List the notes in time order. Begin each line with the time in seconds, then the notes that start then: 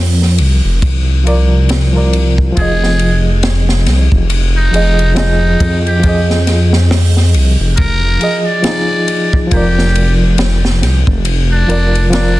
Already playing: F2 F3 F4 A#4 D5
0.22 snare
0.38 C2, ride
0.65 F1
0.82 C2, kick, ride
1.24 F3 F4 A#4, ride
1.28 D5
1.69 snare, ride
1.93 F3 F4 A#4
1.98 D5
2.13 ride
2.38 kick
2.52 F3 F4
2.57 F1 G#4, kick, ride
2.61 D#5
2.84 snare
2.99 ride
3.43 snare, ride
3.69 snare
3.86 C2, snare, ride
4.12 F1, kick
4.30 ride
4.57 D#4
4.71 F1 F3 F4 G#4, ride
4.76 D#5
4.99 ride
5.15 F3 D#4 F4 G#4, snare, ride
5.19 D#5
5.60 F2, kick, ride
5.87 G4, ride
5.99 F3 F4
6.03 G#4, kick, ride
6.09 D#5
6.30 snare
6.47 snare, ride
6.73 snare
6.91 snare, open hi-hat
7.17 snare
7.34 C2, ride
7.60 F1
7.77 A#4, kick, ride
8.18 F3 F4 G#4, ride
8.24 D#5
8.47 D5
8.63 F3 F4 G#4, snare, ride
8.67 D#4
9.08 ride
9.33 kick
9.47 F3 F4
9.51 F1 G4 A#4, kick, ride
9.57 D5
9.79 snare
9.95 ride
10.38 snare, ride
10.65 snare
10.82 C2, snare, ride
11.07 F1, kick
11.25 ride
11.52 D4
11.66 F1 F3 F4 A#4, ride
11.71 D5
11.95 ride
12.10 F3 D4 F4 A#4, snare, ride
12.15 D5